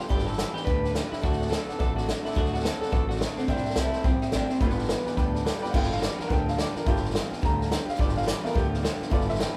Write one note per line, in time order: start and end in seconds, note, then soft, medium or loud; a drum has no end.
0.00 0.08 F3 soft
0.09 0.42 G1 medium
0.09 0.26 G2 medium
0.09 0.36 G2 medium
0.09 0.27 D3 medium
0.09 0.36 D3 medium
0.09 0.27 F3 medium
0.09 0.27 B3 medium
0.09 0.26 D4 medium
0.09 0.26 G4 loud
0.09 0.24 G4 loud
0.09 0.20 B4 medium
0.09 0.20 D5 medium
0.09 0.21 G5 loud
0.09 kick loud
0.09 snare soft
0.18 snare soft
0.26 0.36 F3 soft
0.26 0.37 B3 soft
0.26 0.38 D4 soft
0.26 0.38 G4 soft
0.26 0.54 A4 loud
0.26 0.34 B4 medium
0.26 0.34 D5 medium
0.26 0.34 G5 medium
0.26 snare soft
0.32 snare soft
0.37 0.64 G2 medium
0.37 0.65 E3 medium
0.37 0.55 F3 medium
0.37 0.54 B3 medium
0.37 0.53 D4 medium
0.37 0.52 G4 medium
0.37 0.48 B4 medium
0.37 0.48 D5 medium
0.37 0.49 G5 medium
0.37 snare loud
0.37 hi-hat pedal loud
0.53 0.66 F3 soft
0.53 0.66 B3 medium
0.53 0.66 D4 soft
0.53 0.66 G4 medium
0.53 0.64 G4 loud
0.53 0.62 B4 medium
0.53 0.62 D5 medium
0.53 0.63 G5 medium
0.53 muted upright bass stroke medium
0.53 snare soft
0.65 0.99 D2 medium
0.65 0.83 G2 medium
0.65 0.93 G2 medium
0.65 0.83 D3 medium
0.65 0.93 D3 medium
0.65 0.84 F3 medium
0.65 0.84 B3 medium
0.65 0.83 D4 medium
0.65 0.81 G4 medium
0.65 0.92 B4 loud
0.65 0.76 B4 medium
0.65 0.76 D5 medium
0.65 0.77 G5 loud
0.65 kick loud
0.65 snare soft
0.82 0.93 F3 soft
0.82 0.94 B3 soft
0.82 0.95 D4 soft
0.82 0.94 G4 medium
0.82 0.90 B4 medium
0.82 0.90 D5 medium
0.82 0.91 G5 medium
0.82 snare soft
0.93 1.21 G2 medium
0.93 1.21 D3 medium
0.93 1.11 F3 medium
0.93 1.11 B3 medium
0.93 1.10 D4 medium
0.93 1.09 G4 medium
0.93 1.04 B4 medium
0.93 1.05 D5 medium
0.93 1.05 G5 medium
0.93 snare medium
0.93 hi-hat pedal medium
1.10 1.22 F3 soft
1.10 1.22 B3 soft
1.10 1.22 D4 medium
1.10 1.17 E4 medium
1.10 1.22 G4 medium
1.10 1.18 B4 medium
1.10 1.18 D5 medium
1.10 1.19 G5 medium
1.10 muted upright bass stroke medium
1.10 snare soft
1.21 1.55 D2 medium
1.21 1.39 D3 medium
1.21 1.49 D3 medium
1.21 1.40 F#3 medium
1.21 1.49 A3 loud
1.21 1.40 C4 medium
1.21 1.39 D4 medium
1.21 1.51 F#4 loud
1.21 1.33 A4 medium
1.21 1.37 A4 medium
1.21 1.33 D5 medium
1.21 1.33 F#5 loud
1.21 kick loud
1.21 snare soft
1.32 snare soft
1.38 1.50 C4 soft
1.38 1.51 D4 soft
1.38 1.46 A4 medium
1.38 1.50 A4 medium
1.38 1.46 D5 medium
1.38 1.47 F#5 medium
1.38 snare soft
1.46 1.67 F#3 medium
1.46 snare soft
1.51 1.77 D3 medium
1.51 1.77 B3 loud
1.51 1.68 C4 medium
1.51 1.67 D4 medium
1.51 1.79 A4 medium
1.51 1.62 A4 medium
1.51 1.65 A4 medium
1.51 1.62 D5 medium
1.51 1.62 F#5 medium
1.51 snare loud
1.51 hi-hat pedal medium
1.67 1.79 C4 soft
1.67 1.79 D4 soft
1.67 1.79 A4 medium
1.67 1.74 A4 medium
1.67 1.75 D5 medium
1.67 1.75 F#5 medium
1.67 muted upright bass stroke medium
1.67 snare soft
1.79 2.11 A1 medium
1.79 1.96 D3 medium
1.79 2.05 D3 medium
1.79 1.96 F#3 medium
1.79 2.05 A3 medium
1.79 1.97 C4 medium
1.79 1.96 D4 medium
1.79 1.89 A4 loud
1.79 1.95 A4 loud
1.79 1.94 A4 medium
1.79 1.89 D5 medium
1.79 1.90 F#5 loud
1.79 kick loud
1.79 snare soft
1.95 2.06 C4 soft
1.95 2.07 D4 soft
1.95 2.07 F#4 medium
1.95 2.07 A4 medium
1.95 2.03 A4 medium
1.95 2.03 D5 medium
1.95 2.04 F#5 medium
1.95 snare soft
2.06 2.34 D3 medium
2.06 2.24 F#3 medium
2.06 2.34 A3 medium
2.06 2.24 C4 medium
2.06 2.24 D4 medium
2.06 2.17 A4 medium
2.06 2.22 A4 medium
2.06 2.18 D5 medium
2.06 2.18 F#5 medium
2.06 snare loud
2.06 hi-hat pedal medium
2.23 2.34 C4 soft
2.23 2.35 D4 medium
2.23 2.37 E4 medium
2.23 2.35 A4 medium
2.23 2.32 A4 medium
2.23 2.32 D5 medium
2.23 2.32 F#5 medium
2.23 muted upright bass stroke medium
2.23 snare soft
2.31 2.52 D3 medium
2.31 2.52 F#3 medium
2.31 snare soft
2.36 2.68 D2 medium
2.36 2.62 D3 medium
2.36 2.62 A3 medium
2.36 2.53 C4 medium
2.36 2.53 D4 medium
2.36 2.52 F#4 loud
2.36 2.46 A4 loud
2.36 2.51 A4 loud
2.36 2.47 D5 medium
2.36 2.47 F#5 loud
2.36 kick loud
2.36 snare soft
2.45 snare soft
2.52 2.63 C4 soft
2.52 2.64 D4 soft
2.52 2.63 F#4 loud
2.52 2.63 A4 medium
2.52 2.60 A4 medium
2.52 2.60 D5 medium
2.52 2.61 F#5 medium
2.52 snare soft
2.59 2.80 F#3 medium
2.59 snare soft
2.63 2.89 D3 medium
2.63 2.90 B3 medium
2.63 2.81 C4 medium
2.63 2.81 D4 medium
2.63 2.80 A4 loud
2.63 2.75 A4 medium
2.63 2.80 A4 medium
2.63 2.75 D5 medium
2.63 2.76 F#5 medium
2.63 snare loud
2.63 hi-hat pedal loud
2.81 2.91 C4 soft
2.81 2.92 D4 soft
2.81 2.92 A4 medium
2.81 2.91 A4 loud
2.81 2.88 A4 medium
2.81 2.88 D5 medium
2.81 2.89 F#5 medium
2.81 muted upright bass stroke medium
2.81 snare soft
2.91 3.24 A1 medium
2.91 3.09 D3 medium
2.91 3.18 D3 medium
2.91 3.09 F#3 medium
2.91 3.18 A3 medium
2.91 3.09 C4 medium
2.91 3.09 D4 medium
2.91 3.02 A4 medium
2.91 3.08 A4 loud
2.91 3.07 A4 medium
2.91 3.02 D5 medium
2.91 3.03 F#5 loud
2.91 kick loud
2.91 snare soft
3.08 3.20 C4 soft
3.08 3.21 D4 soft
3.08 3.19 F#4 loud
3.08 3.20 A4 soft
3.08 3.16 A4 medium
3.08 3.16 D5 medium
3.08 3.16 F#5 medium
3.08 snare soft
3.16 3.45 D3 medium
3.16 3.46 A3 medium
3.16 snare soft
3.20 3.37 F#3 medium
3.20 3.38 C4 medium
3.20 3.38 D4 medium
3.20 3.30 A4 medium
3.20 3.36 A4 medium
3.20 3.31 D5 medium
3.20 3.31 F#5 medium
3.20 snare loud
3.20 hi-hat pedal medium
3.36 3.49 C4 medium
3.36 3.49 D4 medium
3.36 3.43 A4 medium
3.36 3.48 A4 medium
3.36 3.44 D5 medium
3.36 3.44 F#5 medium
3.36 muted upright bass stroke medium
3.36 snare soft
3.41 3.49 C4 medium
3.48 3.60 C2 medium
3.48 3.74 C3 medium
3.48 3.65 C3 medium
3.48 3.74 G3 medium
3.48 3.65 G3 medium
3.48 3.66 A#3 medium
3.48 3.78 D4 loud
3.48 3.65 E4 loud
3.48 3.62 G4 medium
3.48 3.58 C5 medium
3.48 3.59 E5 medium
3.48 3.59 G5 loud
3.48 kick loud
3.48 snare soft
3.56 snare soft
3.64 3.76 E4 soft
3.64 3.76 G4 medium
3.64 3.72 C5 medium
3.64 3.72 E5 medium
3.64 3.72 G5 medium
3.64 muted upright bass stroke medium
3.64 snare soft
3.68 3.75 A#3 soft
3.68 snare soft
3.75 3.90 C2 medium
3.75 4.02 C3 medium
3.75 3.93 G3 medium
3.75 4.02 A3 loud
3.75 3.93 A#3 medium
3.75 3.92 E4 medium
3.75 4.06 E4 loud
3.75 3.91 G4 medium
3.75 3.86 C5 medium
3.75 3.86 E5 medium
3.75 3.87 G5 medium
3.75 snare loud
3.75 hi-hat pedal loud
3.92 4.03 A#3 soft
3.92 4.04 E4 soft
3.92 4.04 G4 medium
3.92 4.00 C5 medium
3.92 4.00 E5 medium
3.92 4.01 G5 medium
3.92 snare soft
4.03 4.19 A#1 loud
4.03 4.21 C3 medium
4.03 4.30 C3 medium
4.03 4.30 G3 medium
4.03 4.21 G3 medium
4.03 4.22 A#3 medium
4.03 4.10 C4 medium
4.03 4.21 E4 medium
4.03 4.19 G4 medium
4.03 4.14 C5 loud
4.03 4.15 E5 medium
4.03 4.16 G5 loud
4.03 kick loud
4.03 snare soft
4.20 4.32 A#3 soft
4.20 4.32 D4 medium
4.20 4.32 E4 soft
4.20 4.32 G4 medium
4.20 4.28 C5 medium
4.20 4.29 E5 medium
4.20 4.29 G5 medium
4.20 muted upright bass stroke medium
4.20 snare soft
4.31 4.47 A1 medium
4.31 4.58 C3 medium
4.31 4.49 G3 medium
4.31 4.59 G3 medium
4.31 4.50 A#3 medium
4.31 4.50 D4 medium
4.31 4.48 E4 medium
4.31 4.47 G4 medium
4.31 4.43 C5 medium
4.31 4.43 E5 medium
4.31 4.43 G5 medium
4.31 snare medium
4.31 hi-hat pedal medium
4.48 4.61 A#3 medium
4.48 4.61 C4 medium
4.48 4.61 E4 medium
4.48 4.60 G4 medium
4.48 4.56 C5 medium
4.48 4.56 E5 medium
4.48 4.57 G5 medium
4.48 snare soft
4.60 4.92 G1 loud
4.60 4.86 G2 medium
4.60 4.77 G2 medium
4.60 4.87 D3 medium
4.60 4.78 D3 medium
4.60 4.78 F3 medium
4.60 4.78 B3 loud
4.60 5.42 B3 loud
4.60 4.78 F4 loud
4.60 4.77 G4 loud
4.60 4.71 B4 loud
4.60 4.72 D5 medium
4.60 4.72 G5 loud
4.60 kick loud
4.60 snare soft
4.69 snare soft
4.78 4.88 F3 soft
4.78 4.90 B3 medium
4.78 4.90 F4 medium
4.78 4.89 G4 medium
4.78 4.84 B4 medium
4.78 4.85 D5 medium
4.78 4.85 G5 medium
4.78 snare soft
4.83 snare soft
4.88 5.15 G2 medium
4.88 5.15 E3 loud
4.88 5.06 F3 medium
4.88 5.07 B3 medium
4.88 5.07 F4 medium
4.88 4.99 B4 medium
4.88 4.99 D5 medium
4.88 5.00 G5 medium
4.88 snare loud
4.88 hi-hat pedal medium
4.93 5.05 G4 medium
5.06 5.17 F3 soft
5.06 5.18 B3 medium
5.06 5.18 F4 medium
5.06 5.17 G4 medium
5.06 5.13 B4 loud
5.06 5.13 D5 medium
5.06 5.14 G5 loud
5.06 muted upright bass stroke medium
5.06 snare soft
5.16 5.49 D2 medium
5.16 5.43 G2 medium
5.16 5.34 G2 medium
5.16 5.43 D3 medium
5.16 5.35 D3 medium
5.16 5.35 F3 loud
5.16 5.35 B3 medium
5.16 5.34 F4 medium
5.16 5.33 G4 medium
5.16 5.27 B4 loud
5.16 5.27 D5 medium
5.16 5.28 G5 loud
5.16 kick loud
5.16 snare soft
5.34 5.44 F3 soft
5.34 5.45 B3 soft
5.34 5.46 F4 medium
5.34 5.45 G4 medium
5.34 5.41 B4 medium
5.34 5.41 D5 medium
5.34 5.42 G5 medium
5.34 snare soft
5.44 5.71 G2 medium
5.44 5.71 D3 medium
5.44 5.62 F3 medium
5.44 5.63 B3 medium
5.44 5.63 F4 medium
5.44 5.55 B4 medium
5.44 5.55 D5 medium
5.44 5.56 G5 loud
5.44 snare loud
5.44 hi-hat pedal medium
5.48 5.61 G4 medium
5.62 5.74 B3 medium
5.62 5.74 F4 medium
5.62 5.73 G4 medium
5.62 5.69 B4 medium
5.62 5.69 D5 medium
5.62 5.69 G5 loud
5.62 muted upright bass stroke medium
5.62 snare soft
5.66 5.73 F3 medium
5.71 6.06 G1 loud
5.71 5.90 G2 loud
5.71 5.99 G2 medium
5.71 5.99 D3 medium
5.71 5.91 D3 medium
5.71 5.91 F3 medium
5.71 5.94 A3 medium
5.71 5.94 B3 medium
5.71 5.91 B3 loud
5.71 5.91 F4 loud
5.71 5.95 F4 medium
5.71 5.90 G4 medium
5.71 5.73 F#5 medium
5.71 kick loud
5.71 snare soft
5.71 crash loud
5.76 5.91 G5 loud
5.83 snare soft
5.91 6.01 F3 soft
5.91 6.02 B3 medium
5.91 6.03 F4 medium
5.91 6.02 G4 soft
5.91 6.03 F5 medium
5.91 snare soft
5.97 snare soft
6.02 6.27 G2 medium
6.02 6.28 E3 medium
6.02 6.19 F3 medium
6.02 6.19 B3 medium
6.02 6.19 F4 medium
6.02 6.18 G4 medium
6.02 6.20 D5 medium
6.02 snare loud
6.02 hi-hat pedal medium
6.18 6.29 F3 soft
6.18 6.30 B3 soft
6.18 6.30 F4 medium
6.18 6.30 G4 medium
6.18 6.31 A#4 medium
6.18 muted upright bass stroke medium
6.18 snare soft
6.28 6.62 D2 medium
6.28 6.46 G2 medium
6.28 6.56 G2 medium
6.28 6.56 D3 medium
6.28 6.47 D3 medium
6.28 6.47 F3 medium
6.28 6.47 B3 medium
6.28 6.46 F4 medium
6.28 6.45 G4 medium
6.28 6.30 F#5 medium
6.28 kick loud
6.28 snare soft
6.33 6.48 G5 loud
6.46 6.55 F3 soft
6.46 6.57 B3 soft
6.46 6.57 F4 soft
6.46 6.57 G4 medium
6.46 6.59 F5 medium
6.46 snare soft
6.57 6.84 G2 medium
6.57 6.84 D3 medium
6.57 6.74 F3 medium
6.57 6.75 B3 medium
6.57 6.74 F4 medium
6.57 6.73 G4 medium
6.57 6.76 D5 medium
6.57 snare loud
6.57 hi-hat pedal medium
6.74 6.85 F3 medium
6.74 6.86 B3 soft
6.74 6.86 F4 medium
6.74 6.86 G4 medium
6.74 6.87 A#4 medium
6.74 muted upright bass stroke medium
6.74 snare soft
6.85 7.18 G1 loud
6.85 7.03 G2 medium
6.85 7.12 G2 medium
6.85 7.03 D3 medium
6.85 7.12 D3 medium
6.85 7.03 F3 loud
6.85 7.94 A3 medium
6.85 7.95 B3 medium
6.85 7.03 B3 medium
6.85 7.95 F4 medium
6.85 7.02 F4 medium
6.85 7.14 G4 loud
6.85 7.00 G4 loud
6.85 kick loud
6.85 snare soft
6.96 snare soft
7.01 7.11 F3 medium
7.01 7.12 B3 soft
7.01 7.13 F4 medium
7.01 7.13 G4 medium
7.01 snare soft
7.10 7.30 F3 medium
7.10 7.31 B3 medium
7.10 snare soft
7.14 7.40 G2 medium
7.14 7.40 E3 medium
7.14 7.30 F4 medium
7.14 7.28 G4 medium
7.14 snare loud
7.14 hi-hat pedal loud
7.30 7.41 F3 soft
7.30 7.41 B3 medium
7.30 7.42 F4 medium
7.30 7.41 G4 medium
7.30 muted upright bass stroke medium
7.30 snare soft
7.41 7.75 D2 medium
7.41 7.59 G2 medium
7.41 7.68 G2 medium
7.41 7.59 D3 medium
7.41 7.68 D3 loud
7.41 7.59 F3 medium
7.41 7.58 B3 medium
7.41 7.57 F4 medium
7.41 7.56 G4 medium
7.41 7.71 A#5 loud
7.41 kick loud
7.41 snare soft
7.57 7.68 F3 soft
7.57 7.68 B3 soft
7.57 7.70 F4 soft
7.57 7.69 G4 medium
7.57 snare soft
7.69 7.96 G2 medium
7.69 7.97 D3 loud
7.69 7.87 F3 medium
7.69 7.87 B3 medium
7.69 7.85 F4 medium
7.69 7.84 G4 medium
7.69 snare loud
7.69 hi-hat pedal medium
7.73 7.88 G5 medium
7.85 7.96 F3 medium
7.85 7.97 B3 soft
7.85 7.97 F4 medium
7.85 7.97 G4 medium
7.85 muted upright bass stroke medium
7.85 snare soft
7.90 7.99 F5 medium
7.95 8.14 G2 medium
7.95 8.14 D3 medium
7.95 8.15 F3 loud
7.95 8.14 B3 loud
7.95 8.14 F4 loud
7.95 8.12 G4 loud
7.95 snare soft
7.99 8.31 G1 loud
7.99 8.24 G2 medium
7.99 8.25 D3 medium
7.99 8.16 D5 medium
7.99 kick loud
7.99 snare soft
8.08 snare soft
8.13 8.23 F3 soft
8.13 8.24 B3 medium
8.13 8.26 F4 medium
8.13 8.25 G4 medium
8.13 8.27 F5 loud
8.13 snare soft
8.22 8.43 F3 medium
8.22 8.43 B3 medium
8.22 snare soft
8.27 8.53 G2 medium
8.27 8.53 E3 loud
8.27 8.42 F4 medium
8.27 8.41 G4 medium
8.27 8.44 D5 medium
8.27 snare loud
8.27 hi-hat pedal loud
8.42 8.53 F3 soft
8.42 8.81 A3 medium
8.42 8.53 B3 soft
8.42 8.81 B3 medium
8.42 8.54 F4 medium
8.42 8.81 F4 medium
8.42 8.54 G4 medium
8.42 muted upright bass stroke medium
8.42 snare soft
8.46 8.56 A#4 medium
8.53 8.87 D2 medium
8.53 8.71 G2 medium
8.53 8.81 G2 medium
8.53 8.71 D3 medium
8.53 8.81 D3 medium
8.53 8.71 F3 medium
8.53 8.71 B3 medium
8.53 8.70 F4 medium
8.53 8.68 G4 medium
8.53 8.83 G4 loud
8.53 kick loud
8.53 snare soft
8.70 8.81 F3 soft
8.70 8.82 B3 soft
8.70 8.83 F4 medium
8.70 8.82 G4 medium
8.74 snare soft
8.82 9.09 G2 medium
8.82 9.09 D3 medium
8.82 8.99 F3 medium
8.82 9.00 B3 medium
8.82 8.99 F4 medium
8.82 8.98 G4 medium
8.82 snare loud
8.82 hi-hat pedal medium
8.99 9.10 F3 medium
8.99 9.10 B3 medium
8.99 9.11 F4 medium
8.99 9.11 G4 medium
8.99 muted upright bass stroke medium
8.99 snare soft
9.10 9.43 G1 loud
9.10 9.28 G2 medium
9.10 9.36 G2 medium
9.10 9.28 D3 medium
9.10 9.37 D3 medium
9.10 9.28 F3 loud
9.10 9.57 A3 medium
9.10 9.57 B3 medium
9.10 9.28 B3 medium
9.10 9.57 F4 medium
9.10 9.26 F4 loud
9.10 9.25 G4 medium
9.10 9.28 D5 medium
9.10 kick loud
9.10 snare soft
9.20 snare soft
9.26 9.37 F3 soft
9.26 9.39 B3 soft
9.26 9.39 F4 medium
9.26 9.38 G4 medium
9.26 9.40 E5 medium
9.26 snare soft
9.34 snare soft
9.39 9.57 G2 medium
9.39 9.57 E3 loud
9.39 9.56 F3 medium
9.39 9.56 B3 medium
9.39 9.55 F4 medium
9.39 9.53 G4 medium
9.39 9.57 G5 medium
9.39 snare loud
9.39 hi-hat pedal medium
9.53 9.55 G#5 medium